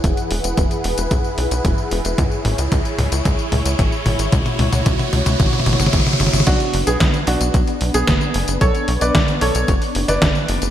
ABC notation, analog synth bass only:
X:1
M:4/4
L:1/16
Q:1/4=112
K:Bdor
V:1 name="Analog synth bass" clef=bass
E,,, z E,,, E,,, E,,, z E,,, E,,, B,,, z B,,, B,,, E,,, z E,,, E,,, | C,, z G,,, C,, C,, z C,, C,, C,, z C,, C,, G,,, z G,,, G,,, | C,, z C,, C,, C,, z C,, C,, G,,, z G,,, G,,, G,,, z G,,, G,,, | B,,, z F,,, B,,, B,,, z B,,, B,,, B,,, z B,,, B,,, F,,, z F,,, F,,, |
B,,, z B,,, B,,, B,,, z B,,, B,,, F,,, z F,,, F,,, F,,, z F,,, F,,, |]